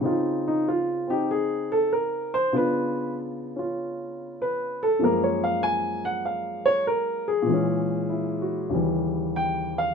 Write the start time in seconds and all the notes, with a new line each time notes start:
0.01 C#3 C4 D#4
0.06 F4
0.48 D#4
0.68 F4
1.07 C4 D#4 G4
1.31 G#4
1.72 A4
1.93 A#4
2.34 C5
2.53 C#3 B3 D4 F4 B4
3.56 C#4 F4
4.42 B4
4.83 A4
4.99 F#2 F3 G#3
5.04 A#3 A#4
5.24 C#5
5.44 F5
5.63 G#5
6.05 F#5
6.25 F5
6.66 C#5
6.87 A#4
7.28 G#4
7.42 A#2 E3
7.50 G#3 C#4
8.09 E4
8.42 F#4
8.69 D#2 C#3 G3
8.74 E3
9.36 G5
9.78 F5